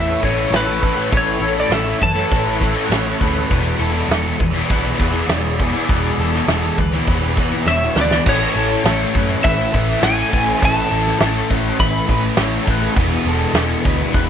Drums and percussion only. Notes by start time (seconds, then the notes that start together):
0.23 kick
0.54 snare, open hi-hat
0.83 kick
1.12 kick, open hi-hat
1.72 snare, open hi-hat
2.02 kick
2.32 kick, open hi-hat
2.61 kick
2.92 snare, open hi-hat
3.21 kick
3.51 kick, open hi-hat
4.11 snare, open hi-hat
4.40 kick
4.70 kick, open hi-hat
5.00 kick
5.29 snare, open hi-hat
5.60 kick
5.89 kick, open hi-hat
6.34 snare
6.48 snare, open hi-hat
6.78 kick
7.06 kick, open hi-hat
7.37 kick
7.67 snare
7.96 snare
8.11 snare
8.26 kick, crash
8.56 open hi-hat
8.86 snare, open hi-hat
9.15 kick, open hi-hat
9.45 kick, open hi-hat
9.74 kick, open hi-hat
10.03 snare, open hi-hat
10.33 kick, open hi-hat
10.62 kick, open hi-hat
10.92 open hi-hat
11.07 snare
11.21 snare, open hi-hat
11.50 kick, open hi-hat
11.80 kick, open hi-hat
12.09 kick, open hi-hat
12.37 snare, open hi-hat
12.67 kick, open hi-hat
12.96 kick, open hi-hat
13.26 open hi-hat
13.55 snare, open hi-hat
13.85 kick, open hi-hat
14.14 kick, open hi-hat